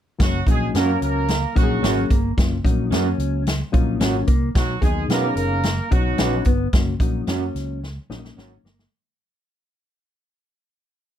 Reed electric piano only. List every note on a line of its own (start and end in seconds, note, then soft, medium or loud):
0.19 0.39 F#3 medium
0.19 0.39 A#3 medium
0.19 0.39 C#4 medium
0.19 0.39 F#4 medium
0.47 1.24 F#3 medium
0.47 1.25 A#3 medium
0.47 1.25 C#4 medium
0.47 1.25 F#4 medium
1.56 2.14 F#3 medium
1.56 2.14 A#3 medium
1.56 2.14 C#4 medium
1.56 1.63 F#4 medium
1.63 2.17 G#4 medium
2.37 2.57 F#3 medium
2.37 2.57 A#3 medium
2.37 2.57 C#4 medium
2.37 2.57 F4 medium
2.64 3.42 F#3 medium
2.64 2.71 A3 soft
2.64 3.42 C#4 medium
2.64 3.42 F#4 medium
2.71 3.45 A#3 medium
3.72 4.31 F#3 medium
3.72 4.31 A#3 medium
3.72 4.31 C#4 medium
3.72 4.31 F4 medium
4.55 4.74 F#3 medium
4.55 4.75 B3 medium
4.55 4.75 D#4 medium
4.55 4.75 F#4 medium
4.81 5.59 F#3 medium
4.81 5.59 B3 medium
4.81 5.60 D#4 medium
4.81 5.59 G#4 medium
5.92 6.50 F#3 medium
5.92 6.50 B3 medium
5.92 5.99 C#4 medium
5.92 6.50 F#4 medium
5.99 6.53 D#4 medium
6.74 6.93 F#3 medium
6.74 6.93 A#3 medium
6.74 6.93 C#4 medium
6.74 6.93 F#4 medium
7.02 7.78 F#3 medium
7.02 7.78 A#3 medium
7.02 7.78 C#4 medium
7.02 7.79 F#4 medium
8.10 8.68 F#3 medium
8.10 8.16 G#3 medium
8.10 8.68 C#4 medium
8.10 8.68 D#4 medium
8.17 8.71 A#3 medium